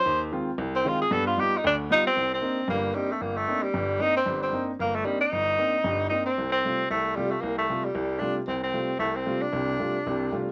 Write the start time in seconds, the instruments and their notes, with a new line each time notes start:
Already playing: tenor saxophone C5
0.06 grand piano D#2
0.32 grand piano D#3 G#3 C4 F4
0.58 grand piano C2
0.75 tenor saxophone C4
0.85 grand piano D#3 G#3 C4 F4, tenor saxophone F4
1.02 tenor saxophone G#4
1.11 grand piano G2 B3, tenor saxophone A4
1.27 tenor saxophone F4
1.37 grand piano G3 B3 D#4 F4, tenor saxophone G4
1.57 tenor saxophone D#4
1.64 grand piano D2 D3, tenor saxophone D4
1.90 grand piano G3 B3 D#4 F4, tenor saxophone D#4
2.07 tenor saxophone C4
2.17 grand piano C2
2.34 tenor saxophone C4
2.42 grand piano A#3 C4 D4 D#4
2.68 grand piano G1 G2, tenor saxophone A#3
2.95 tenor saxophone G3, grand piano A#3 C4 D4 D#4
3.12 tenor saxophone A3
3.21 grand piano G1, tenor saxophone A#3
3.37 tenor saxophone A3
3.47 grand piano A#3 C4 D4 D#4
3.63 tenor saxophone G3
3.73 grand piano G1 G2
4.00 grand piano A#3 C4 D4 D#4, tenor saxophone D#4
4.16 tenor saxophone C4
4.26 grand piano G1 G2
4.42 tenor saxophone C4
4.53 grand piano A#3 C4 D4 D#4
4.79 grand piano G1, tenor saxophone A#3
4.95 tenor saxophone A3
5.04 tenor saxophone G3, grand piano A#3 C4 D4 D#4
5.20 tenor saxophone D#4
5.32 grand piano G1
5.58 grand piano A#3 C4 D4 D#4
5.84 grand piano G1 G2
6.09 grand piano A#3 C4 D4 D#4, tenor saxophone D#4
6.26 tenor saxophone C4
6.38 grand piano C2
6.52 tenor saxophone C4
6.65 grand piano C3 G3 A3 F4
6.90 grand piano C2, tenor saxophone A3
7.16 grand piano C3 G3 A3 F4, tenor saxophone G3
7.31 tenor saxophone A3
7.41 grand piano C2, tenor saxophone A#3
7.58 tenor saxophone A3
7.69 grand piano C3 G3 A3 F4
7.85 tenor saxophone G3
7.95 grand piano C2
8.19 grand piano C3 G3 A3 F4, tenor saxophone D4
8.48 grand piano C2, tenor saxophone C4
8.63 tenor saxophone C4
8.73 grand piano C3 G3 A3 F4
8.99 grand piano C2, tenor saxophone A3
9.16 tenor saxophone C4
9.26 grand piano C3 G3 A3 F4
9.42 tenor saxophone D4
9.52 grand piano C2 C3
9.79 grand piano C3 G3 A3 F4
10.06 grand piano C2 C3
10.32 grand piano C3 G3 A3 F4